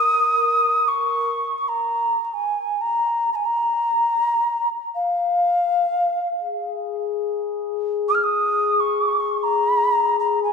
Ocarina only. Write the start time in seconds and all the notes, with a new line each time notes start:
Already playing: D#6
0.88 C#6
1.58 C#6
1.68 A#5
2.25 A#5
2.34 G#5
2.81 A#5
3.32 G#5 A#5
3.45 A#5
4.95 F5
8.08 D#6
8.15 F6
8.23 D#6
8.80 C#6
9.43 A#5
10.19 A#5
10.44 G#5